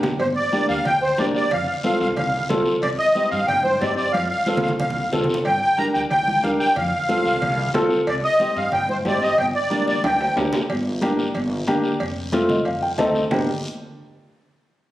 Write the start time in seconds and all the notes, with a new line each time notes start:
Already playing: G1
0.03 low conga, low timbale, short guiro
0.20 G1 C5, cowbell, long guiro
0.36 D5
0.52 A#3 D4 G4, high conga, short guiro
0.69 D2 F5, short guiro
0.85 D2 G5, cowbell, low conga, long guiro
1.02 C5
1.18 C2 A#3 D4 G4 D5, high conga, low timbale, short guiro
1.35 D5, short guiro
1.51 F1 F5, cowbell, low conga, long guiro
1.69 F5
1.84 C4 F4 A4 F5, high conga, short guiro
2.00 C2 F5, short guiro
2.16 C2 F5, cowbell, low conga, long guiro
2.49 C2 C4 F4 A4, high conga, low conga, low timbale, short guiro
2.66 short guiro
2.82 C2 D5, cowbell, long guiro
2.99 D#5
3.15 C4 D#4 G4, high conga, short guiro
3.31 G2 F5, short guiro
3.47 G2 G5, cowbell, low conga, long guiro
3.64 C5, high conga
3.80 G2 C4 D#4 G4 D5, high conga, low timbale, short guiro
3.96 D5, short guiro
4.12 F2 F5, cowbell, high conga, long guiro
4.29 F5
4.46 C4 F4 A4, high conga, short guiro
4.57 low conga
4.63 C2 F5, short guiro
4.68 low conga
4.79 C2 F5, cowbell, low conga, long guiro
4.90 low conga
5.12 C2 C4 F4 A4, low conga, short guiro
5.24 low conga
5.29 short guiro
5.34 low conga
5.45 G2 G5, cowbell, long guiro
5.62 G5
5.78 D4 G4 A#4 A#5, high conga, short guiro
5.94 D2 G5, short guiro
6.10 D2 G5, cowbell, low conga, long guiro
6.28 high conga
6.43 D2 D4 G4 A#4 F5, high conga, short guiro
6.60 G5, short guiro
6.76 F2 F5, cowbell, low conga, long guiro
7.09 C4 F4 A4, high conga, short guiro
7.25 C2, short guiro
7.42 C2, cowbell, low conga, long guiro
7.74 C2 C4 F4 A4, high conga, low conga, low timbale, short guiro
7.90 short guiro
8.07 C2 D5, cowbell, long guiro
8.24 D#5
8.39 C4 D#4 G4, high conga, short guiro
8.56 G2 F5, short guiro
8.72 G2 G5, cowbell, low conga, long guiro
8.89 C5, high conga
9.05 G2 C4 D#4 G4 D5, high conga, low timbale, short guiro
9.22 D#5, short guiro
9.38 G1 G5, cowbell, low conga, long guiro
9.55 D5
9.70 A#3 D4 G4, high conga, short guiro
9.87 D2 D5, high conga, short guiro
10.04 D2 G5, cowbell, high conga, high timbale, long guiro
10.21 low timbale
10.36 D2 A#3 D4 G4, low timbale, short guiro
10.53 low conga, low timbale, short guiro
10.70 G1, cowbell, long guiro
11.02 A#3 D4 G4, cowbell, high conga, short guiro
11.19 short guiro
11.34 G1, cowbell, long guiro
11.67 D2 A#3 D4 G4, cowbell, high conga, short guiro
11.84 short guiro
12.00 F1, cowbell, long guiro
12.32 A3 C4 F4, cowbell, high conga, short guiro
12.49 D#5, high conga, low conga, short guiro
12.65 F1 F5, cowbell, long guiro
12.82 G5
12.98 D2 A3 C4 D#4 A5, cowbell, high conga, low conga, short guiro
13.15 short guiro
13.31 G1 A#3 D4 G4, low conga, low timbale, long guiro